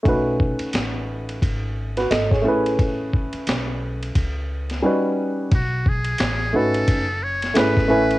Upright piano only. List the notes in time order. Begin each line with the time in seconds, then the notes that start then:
0.03 A3 C#4 D#4
0.07 F#4 B4
1.97 F#4 B4
2.11 A4 D#5
2.31 G#4 C#5
2.42 A3 C#4 E4
2.46 G#4 B4
4.82 G3 C#4 D#4 F#4 B4
6.53 A3 C#4 D#4 F#4 B4
7.54 A3 C#4 E4 G#4 B4
7.88 A3 C#4 E4 B4 G#5